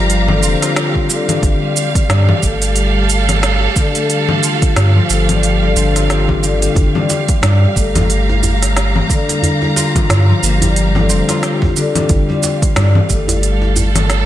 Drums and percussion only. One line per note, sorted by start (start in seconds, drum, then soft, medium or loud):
0.10 open hi-hat soft
0.10 shaker soft
0.28 low conga medium
0.43 shaker medium
0.62 snare soft
0.62 open hi-hat medium
0.62 shaker soft
0.76 snare loud
0.76 open hi-hat soft
0.76 shaker soft
0.95 kick medium
1.10 shaker medium
1.29 open hi-hat medium
1.29 low conga medium
1.29 shaker soft
1.43 kick loud
1.43 open hi-hat soft
1.43 shaker soft
1.77 shaker medium
1.95 kick loud
1.95 open hi-hat medium
1.95 shaker soft
2.10 snare loud
2.10 open hi-hat soft
2.10 shaker soft
2.29 low conga medium
2.43 kick medium
2.43 shaker medium
2.62 open hi-hat soft
2.62 shaker soft
2.76 open hi-hat soft
2.76 shaker soft
3.09 shaker medium
3.29 snare soft
3.29 open hi-hat medium
3.29 low conga medium
3.29 shaker soft
3.43 snare loud
3.43 open hi-hat soft
3.43 shaker soft
3.76 kick loud
3.76 shaker medium
3.95 open hi-hat soft
3.95 shaker soft
4.10 open hi-hat soft
4.10 shaker soft
4.29 low conga medium
4.43 shaker medium
4.62 kick loud
4.62 open hi-hat medium
4.62 shaker soft
4.76 snare medium
4.76 open hi-hat soft
4.76 shaker soft
5.10 shaker medium
5.29 open hi-hat medium
5.29 low conga medium
5.29 shaker soft
5.43 open hi-hat soft
5.43 shaker soft
5.76 shaker medium
5.96 snare soft
5.96 open hi-hat medium
5.96 shaker soft
6.10 snare loud
6.10 open hi-hat soft
6.10 shaker soft
6.29 kick medium
6.29 low conga medium
6.43 shaker medium
6.62 open hi-hat soft
6.62 shaker soft
6.75 kick loud
6.75 open hi-hat soft
6.75 djembe bass medium
6.75 shaker soft
6.95 djembe tone medium
6.95 low conga medium
7.10 djembe slap medium
7.10 shaker medium
7.29 kick loud
7.29 open hi-hat medium
7.29 shaker soft
7.42 snare loud
7.42 open hi-hat soft
7.42 djembe tone medium
7.42 shaker soft
7.76 kick medium
7.76 shaker medium
7.96 open hi-hat medium
7.96 djembe tone medium
7.96 low conga medium
7.96 djembe bass medium
7.96 shaker soft
8.10 open hi-hat soft
8.10 shaker soft
8.29 djembe tone medium
8.43 djembe tone medium
8.43 djembe bass medium
8.43 shaker medium
8.63 snare soft
8.63 open hi-hat medium
8.63 shaker soft
8.77 snare loud
8.77 open hi-hat soft
8.77 shaker soft
8.96 low conga medium
9.10 kick loud
9.10 shaker medium
9.29 open hi-hat medium
9.29 djembe slap medium
9.29 shaker soft
9.43 open hi-hat soft
9.43 djembe bass medium
9.43 shaker soft
9.62 djembe tone medium
9.76 djembe slap medium
9.76 shaker medium
9.96 kick loud
9.96 open hi-hat medium
9.96 low conga medium
9.96 shaker soft
10.09 snare medium
10.09 open hi-hat soft
10.09 djembe tone medium
10.09 shaker soft
10.43 shaker medium
10.62 open hi-hat medium
10.62 djembe tone medium
10.62 djembe bass medium
10.62 shaker soft
10.76 open hi-hat soft
10.76 shaker soft
10.95 djembe tone medium
10.95 low conga medium
11.10 djembe slap soft
11.10 shaker medium
11.29 snare soft
11.29 open hi-hat medium
11.29 djembe slap medium
11.29 shaker soft
11.43 snare loud
11.43 open hi-hat soft
11.43 shaker soft
11.62 kick medium
11.62 djembe slap medium
11.62 djembe bass medium
11.76 shaker medium
11.96 open hi-hat medium
11.96 djembe tone medium
11.96 low conga medium
11.96 shaker soft
12.09 kick loud
12.09 open hi-hat soft
12.09 djembe bass medium
12.09 shaker soft
12.30 djembe tone medium
12.43 djembe slap medium
12.43 shaker medium
12.62 kick loud
12.62 open hi-hat medium
12.62 shaker soft
12.76 snare loud
12.76 open hi-hat soft
12.76 djembe tone medium
12.76 shaker soft
12.95 low conga medium
13.10 kick medium
13.10 shaker medium
13.28 open hi-hat medium
13.28 djembe tone medium
13.28 djembe bass loud
13.28 shaker soft
13.43 open hi-hat soft
13.43 shaker soft
13.62 djembe tone medium
13.76 djembe tone medium
13.76 djembe bass medium
13.76 shaker medium
13.96 snare soft
13.96 open hi-hat medium
13.96 low conga medium
13.96 shaker soft
14.10 snare loud
14.10 open hi-hat soft
14.10 shaker soft